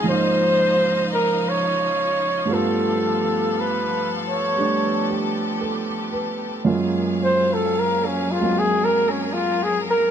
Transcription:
Already playing: C#2 G#2 F3 G#3 D#4 F4 D#5 F5
0.04 G#2 F3 A#3 C#4 D#4
0.09 C5
1.14 A#4
1.49 C#5
2.46 G2 G3 A3
2.50 B3 F4 A4
3.60 B4
4.29 C#5
4.57 G3 A3 D4 G4
5.10 G4
5.61 A4
6.12 B4
6.65 F#2 F#3 G#3 A#3 F4 G#4 F5
7.24 C5
7.54 A4
7.79 A#4
8.06 C#4
8.31 F4
8.39 G#3 A#3 C4 F#4
8.59 G#4
8.78 A#4
8.85 A#4
9.10 C#4
9.33 F4
9.63 G#4
9.90 A#4

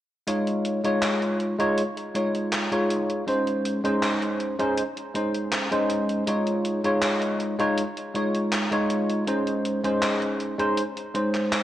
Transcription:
0.27 G#3 D#4 F4 C#5, closed hi-hat
0.47 closed hi-hat
0.65 closed hi-hat
0.84 G#3 D#4 F4 C#5, closed hi-hat
1.02 clap, closed hi-hat
1.22 closed hi-hat
1.40 closed hi-hat
1.59 G#3 D#4 F4 C#5, closed hi-hat
1.78 closed hi-hat
1.97 closed hi-hat
2.14 G#3 D#4 F4 C#5, closed hi-hat
2.35 closed hi-hat
2.52 clap, closed hi-hat
2.71 G#3 D#4 F4 C#5, closed hi-hat
2.90 closed hi-hat
3.10 closed hi-hat
3.27 G#3 C#4 D#4 C5, closed hi-hat
3.47 closed hi-hat
3.65 closed hi-hat
3.84 G#3 C#4 D#4 C5, closed hi-hat
4.03 clap, closed hi-hat
4.22 closed hi-hat
4.40 closed hi-hat
4.59 G#3 C#4 D#4 C5, closed hi-hat
4.78 closed hi-hat
4.97 closed hi-hat
5.14 G#3 C#4 D#4 C5, closed hi-hat
5.35 closed hi-hat
5.52 clap, closed hi-hat
5.71 G#3 C#4 D#4 C5, closed hi-hat
5.90 closed hi-hat
6.09 closed hi-hat
6.27 G#3 D#4 F4 C#5, closed hi-hat
6.47 closed hi-hat
6.65 closed hi-hat
6.84 G#3 D#4 F4 C#5, closed hi-hat
7.02 clap, closed hi-hat
7.22 closed hi-hat
7.40 closed hi-hat
7.59 G#3 D#4 F4 C#5, closed hi-hat
7.78 closed hi-hat
7.97 closed hi-hat
8.14 G#3 D#4 F4 C#5, closed hi-hat
8.34 closed hi-hat
8.52 clap, closed hi-hat
8.71 G#3 D#4 F4 C#5, closed hi-hat
8.90 closed hi-hat
9.09 closed hi-hat
9.27 G#3 C#4 D#4 C5, closed hi-hat
9.47 closed hi-hat
9.65 closed hi-hat
9.84 G#3 C#4 D#4 C5, closed hi-hat
10.03 clap, closed hi-hat
10.22 closed hi-hat
10.40 closed hi-hat
10.59 G#3 C#4 D#4 C5, closed hi-hat
10.78 closed hi-hat
10.97 closed hi-hat
11.14 G#3 C#4 D#4 C5, closed hi-hat
11.35 clap, closed hi-hat
11.53 clap, closed hi-hat

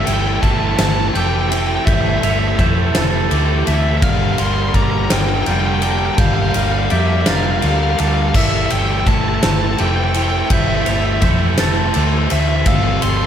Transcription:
Already playing: G3 G4 C5 E5 A5 E6
0.01 E5
0.06 G1 A2 E3 A3 C4 E4 A4 G5, ride
0.14 G5
0.22 G5
0.27 G5
0.36 G5
0.41 G1 A2 E3 A3 C4 E4 A4 E5 A5, kick, ride
0.51 A5
0.59 A5
0.67 A5
0.77 G1 A2 E3 A3 C4 E4 A4 A5, snare, ride
0.84 A5
0.92 A5
1.00 A5
1.08 A5
1.13 F1 A2 E3 A3 C4 E4 G4 A4 G5 G6, ride
1.20 G5
1.27 G5
1.34 G5
1.42 G5
1.49 A2 E3 A3 C4 E4 A4 G5, ride
1.57 G5
1.67 G5
1.75 G5
1.86 G1 A2 E3 G3 A3 C4 E4 A4 E5 G6, kick, ride
1.94 E5
2.01 E5
2.09 E5
2.18 E5
2.22 G1 A2 E3 A3 C4 E4 A4 E5 F7, ride
2.31 E5
2.39 E5
2.48 E5
2.56 F2 A2 E3 A3 C4 E5, kick, ride
2.60 E4 A4 G6
2.95 F1 A2 E3 A3 C4 E4 A4 A6, snare, ride
3.30 D2 A2 E3 A3 C4 E4 G4 A4, ride
3.67 D2 A2 E3 A3 C4 E4 A4 E5, ride
3.74 E5
3.82 E5
3.89 E5
3.97 E5
4.02 G1 G2 D3 G3 A#3 D4 F4 A#4 D5 F5 A#5 F6, kick, ride
4.10 F5
4.18 F5
4.25 F5
4.33 F5
4.38 G1 G2 D3 G3 A#3 D4 A#4 C6, ride
4.46 C6
4.54 C6
4.62 C6
4.69 C6
4.74 G1 G2 D3 G3 A#3 D4 A#4 D5 A#5, kick, ride
4.83 A#5
4.90 A#5
4.98 A#5
5.05 A#5
5.10 G1 G2 D3 G3 A#3 D4 A#4 G5, snare, ride
5.20 G5
5.28 G5
5.35 G5
5.42 G2 G5
5.46 F1 D3 G3 A#3 D4 F4 A#4 G6, ride
5.51 G5
5.60 G5
5.67 G5
5.74 G5
5.82 G2 D3 G3 A#3 D4 A#4 G5, ride
5.91 G5
5.98 G5
6.06 G5
6.14 G1 G5, kick, ride
6.18 G2 D3 G3 A#3 D4 A#4 F5 G6
6.27 F5
6.34 F5
6.42 F5
6.49 F5
6.54 G1 G2 D3 G3 A#3 D4 A#4 F5 F6, ride
6.63 F5
6.72 F5
6.79 F5
6.85 F5
6.90 F2 G2 D3 G3 A#3 D4 A#4 D5 E5 G6, ride
6.99 E5
7.07 E5
7.13 E5
7.21 E5
7.26 F1 G2 D3 G3 A#3 D4 A#4 F5 A6, snare, ride
7.35 F5
7.43 F5
7.51 F5
7.58 F4 F5, ride
7.63 D2 G2 D3 G3 A#3 D4 A#4 F5
7.76 F5
7.83 F5
7.91 F5
7.98 D2 G2 D3 G3 A#3 D4 A#4 F5, ride
8.08 F5
8.14 F5
8.23 F5
8.29 F5
8.34 G1 A2 E3 G3 A3 C4 E4 A4 C5 E5 G5 C6 E6, kick, crash
8.43 E5
8.51 E5
8.57 E5
8.66 E5
8.70 G1 A2 E3 A3 C4 E4 A4 G5, ride
8.79 G5
8.86 G5
8.93 G5
9.00 G5
9.07 G1 A2 E3 A3 C4 E4 A4 E5 A5, kick, ride
9.15 A5
9.21 A5
9.29 A5
9.35 A5
9.43 G1 A2 E3 A3 C4 E4 A4 A5, snare, ride
9.51 A5
9.59 A5
9.65 A5
9.73 A5
9.78 F1 A2 E3 A3 C4 E4 G4 A4 G5 G6, ride
9.87 G5
9.96 G5
10.04 G5
10.14 A2 E3 A3 C4 E4 A4 G5, ride
10.23 G5
10.31 G5
10.38 G5
10.46 A2 G5, ride
10.50 G1 E3 G3 A3 C4 E4 A4 E5 G6, kick
10.61 E5
10.68 E5
10.75 E5
10.82 E5, ride
10.86 G1 A2 E3 A3 C4 E4 A4 F7
10.91 E5
10.99 E5
11.06 E5
11.14 E5
11.22 F2 A2 E3 A3 C4 E4 A4 E5 G6, kick, ride
11.58 F1 A2 E3 A3 C4 E4 A4 A6, snare, ride
11.94 D2 A2 E3 A3 C4 E4 G4 A4, ride
12.30 D2 A2 E3 A3 C4 E4 A4 E5, ride
12.40 E5
12.49 E5
12.56 E5
12.66 G1 F2 C3 F3 G3 A3 C4 F4 A4 F5 C6 E6, kick, ride
12.76 F5
12.84 F5
12.93 F5
13.02 G1 F2 C3 F3 A3 C4 F4 A4 C6, ride
13.10 C6
13.17 C6

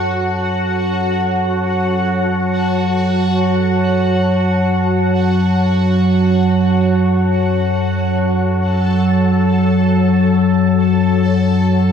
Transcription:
Already playing: F#2 F#3 F#4 C#5 F#5 A5
8.61 A4 A5

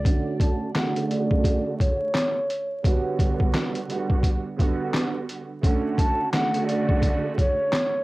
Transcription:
0.05 D3 A3 C#4 F#4, kick, closed hi-hat
0.39 A5, kick, closed hi-hat
0.74 C#3 D3 A3 F#4 F#5, snare, clap, closed hi-hat
0.96 closed hi-hat
1.09 D5, closed hi-hat
1.31 kick
1.44 kick, closed hi-hat
1.79 C#5, kick, closed hi-hat
2.15 snare, clap, closed hi-hat
2.50 closed hi-hat
2.84 D3 G3 B3 F#4, kick, closed hi-hat
3.19 kick, closed hi-hat
3.40 kick
3.54 snare, clap, closed hi-hat
3.75 closed hi-hat
3.89 D3 G3 B3 F#4, closed hi-hat
4.10 kick
4.23 kick, closed hi-hat
4.57 D3 G3 B3 F#4, kick, closed hi-hat
4.94 snare, clap, closed hi-hat
5.29 closed hi-hat
5.63 D3 A3 C#4 F#4, kick, closed hi-hat
5.97 A5, kick, closed hi-hat
6.32 C#3 D3 A3 F#4 F#5, snare, clap, closed hi-hat
6.54 closed hi-hat
6.67 D5, closed hi-hat
6.89 kick
7.02 kick, closed hi-hat
7.38 C#5, kick, closed hi-hat
7.73 snare, clap, closed hi-hat

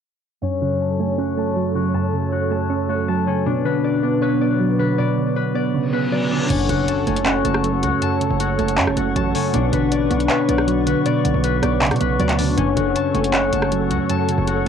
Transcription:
0.42 F#2 F#3 C#4 A4 C#5
0.61 C#3 F#4
0.80 A5
0.99 A3 C#4
1.18 C#4 F#4
1.37 A3 A5
1.56 F#3
1.75 C#3 F#4
1.94 F#2 A5
2.13 C#3
2.32 F#4
2.51 A3 A5
2.70 C#4
2.89 A3 F#4
3.08 F#3 A5
3.27 C#3 C#4
3.46 B2 F#3 B3 D4 B4
3.65 D3 B4
3.84 D5
4.03 B3 D4
4.22 B4 C#5
4.41 B3 D5
4.60 F#3
4.79 D3 B4
4.98 B2 D5
5.18 D3
5.36 B4
5.55 B3 D5
5.74 C#3, reverse cymbal
5.93 B3 B4
6.12 F#3 D5
6.31 D3 D4
6.49 F#1 F#2 C#4 A4 C#5 F#5 C#6, closed hi-hat, crash, impact
6.69 F#1 C#3 F#4, closed hi-hat
6.88 A5, closed hi-hat
7.07 F#1 A3 C#4, closed hi-hat
7.16 closed hi-hat
7.25 C#4 F#4, clap, closed hi-hat
7.45 F#1 A3 A5, closed hi-hat
7.54 cross-stick
7.64 F#3, closed hi-hat
7.83 C#2 C#3 F#4, closed hi-hat
8.01 F#2 A5, closed hi-hat
8.21 C#3, closed hi-hat
8.30 F#1
8.40 F#4, closed hi-hat
8.59 F#1 A3 A5, closed hi-hat
8.68 closed hi-hat
8.77 F#2 C#4, clap, closed hi-hat
8.87 F#1, cross-stick
8.97 F#1 A3 F#4, closed hi-hat
9.16 A1 F#3 A5, closed hi-hat
9.35 C#3 C#4, open hi-hat
9.54 B1 B2 D4 B4, closed hi-hat
9.72 A1 D3 B4, closed hi-hat
9.92 D5, closed hi-hat
10.10 B1 B3 D4, closed hi-hat
10.20 closed hi-hat
10.29 B4 C#5, clap, closed hi-hat
10.49 B1 B3 D5, closed hi-hat
10.58 cross-stick
10.67 F#3, closed hi-hat
10.87 D3 B4, closed hi-hat
11.06 B2 D5, closed hi-hat
11.25 B1 D3, closed hi-hat
11.34 B1
11.44 B4, closed hi-hat
11.62 B1 B3 D5, cross-stick, closed hi-hat
11.82 C#3, clap, closed hi-hat
11.86 closed hi-hat
11.91 B2, cross-stick, closed hi-hat
11.96 closed hi-hat
12.00 B1 B3 B4, closed hi-hat
12.20 D2 F#3 D5, closed hi-hat
12.29 clap, closed hi-hat
12.39 D3 D4, open hi-hat
12.57 F#1 F#2 C#4 A4 C#5 F#5, closed hi-hat
12.77 F#1 C#3 F#4, closed hi-hat
12.96 A5, closed hi-hat
13.14 F#1 A3 C#4, closed hi-hat
13.24 closed hi-hat
13.33 C#4 F#4, clap, closed hi-hat
13.52 F#1 A3 A5, closed hi-hat
13.62 cross-stick
13.71 F#3, closed hi-hat
13.91 C#2 C#3 F#4, closed hi-hat
14.09 F#2 A5, closed hi-hat
14.28 C#3, closed hi-hat
14.38 F#1
14.47 F#4, closed hi-hat

